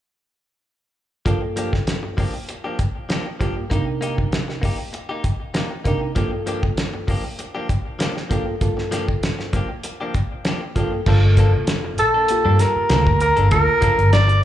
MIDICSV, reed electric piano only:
0, 0, Header, 1, 2, 480
1, 0, Start_track
1, 0, Key_signature, -2, "minor"
1, 0, Tempo, 612870
1, 984, Time_signature, 4, 2, 24, 8
1, 11309, End_track
2, 0, Start_track
2, 0, Title_t, "Reed electric piano"
2, 0, Program_c, 0, 4
2, 984, Note_on_c, 0, 43, 67
2, 989, Note_on_c, 0, 58, 61
2, 990, Note_on_c, 0, 65, 63
2, 993, Note_on_c, 0, 69, 69
2, 1713, Note_off_c, 0, 43, 0
2, 1715, Note_off_c, 0, 58, 0
2, 1716, Note_off_c, 0, 65, 0
2, 1718, Note_off_c, 0, 69, 0
2, 2664, Note_on_c, 0, 43, 67
2, 2666, Note_on_c, 0, 65, 58
2, 2668, Note_on_c, 0, 58, 66
2, 2669, Note_on_c, 0, 67, 70
2, 2851, Note_off_c, 0, 43, 0
2, 2852, Note_off_c, 0, 58, 0
2, 2852, Note_off_c, 0, 65, 0
2, 2853, Note_off_c, 0, 67, 0
2, 2903, Note_on_c, 0, 48, 69
2, 2905, Note_on_c, 0, 62, 58
2, 2906, Note_on_c, 0, 63, 61
2, 2907, Note_on_c, 0, 70, 69
2, 3633, Note_off_c, 0, 48, 0
2, 3634, Note_off_c, 0, 62, 0
2, 3634, Note_off_c, 0, 63, 0
2, 3635, Note_off_c, 0, 70, 0
2, 4591, Note_on_c, 0, 48, 61
2, 4593, Note_on_c, 0, 62, 60
2, 4596, Note_on_c, 0, 63, 59
2, 4596, Note_on_c, 0, 70, 75
2, 4775, Note_off_c, 0, 48, 0
2, 4776, Note_off_c, 0, 62, 0
2, 4777, Note_off_c, 0, 63, 0
2, 4777, Note_off_c, 0, 70, 0
2, 4829, Note_on_c, 0, 43, 67
2, 4834, Note_on_c, 0, 65, 61
2, 4835, Note_on_c, 0, 58, 65
2, 4837, Note_on_c, 0, 69, 76
2, 5557, Note_off_c, 0, 43, 0
2, 5559, Note_off_c, 0, 58, 0
2, 5559, Note_off_c, 0, 65, 0
2, 5561, Note_off_c, 0, 69, 0
2, 6504, Note_on_c, 0, 43, 62
2, 6504, Note_on_c, 0, 58, 65
2, 6506, Note_on_c, 0, 65, 63
2, 6508, Note_on_c, 0, 69, 76
2, 6692, Note_off_c, 0, 43, 0
2, 6692, Note_off_c, 0, 58, 0
2, 6693, Note_off_c, 0, 65, 0
2, 6694, Note_off_c, 0, 69, 0
2, 6741, Note_on_c, 0, 43, 72
2, 6745, Note_on_c, 0, 58, 61
2, 6745, Note_on_c, 0, 65, 64
2, 6748, Note_on_c, 0, 69, 79
2, 7473, Note_off_c, 0, 43, 0
2, 7475, Note_off_c, 0, 58, 0
2, 7475, Note_off_c, 0, 65, 0
2, 7476, Note_off_c, 0, 69, 0
2, 8425, Note_on_c, 0, 58, 62
2, 8426, Note_on_c, 0, 43, 69
2, 8429, Note_on_c, 0, 65, 62
2, 8430, Note_on_c, 0, 69, 73
2, 8612, Note_off_c, 0, 58, 0
2, 8613, Note_off_c, 0, 43, 0
2, 8614, Note_off_c, 0, 65, 0
2, 8615, Note_off_c, 0, 69, 0
2, 8672, Note_on_c, 0, 58, 83
2, 8674, Note_on_c, 0, 65, 70
2, 8676, Note_on_c, 0, 69, 88
2, 9398, Note_off_c, 0, 58, 0
2, 9399, Note_off_c, 0, 65, 0
2, 9400, Note_off_c, 0, 69, 0
2, 9636, Note_on_c, 0, 58, 67
2, 9637, Note_on_c, 0, 65, 59
2, 9641, Note_on_c, 0, 67, 73
2, 10360, Note_off_c, 0, 58, 0
2, 10361, Note_off_c, 0, 65, 0
2, 10362, Note_off_c, 0, 67, 0
2, 10592, Note_on_c, 0, 58, 66
2, 10597, Note_on_c, 0, 65, 61
2, 10599, Note_on_c, 0, 70, 76
2, 11309, Note_off_c, 0, 58, 0
2, 11309, Note_off_c, 0, 65, 0
2, 11309, Note_off_c, 0, 70, 0
2, 11309, End_track
0, 0, End_of_file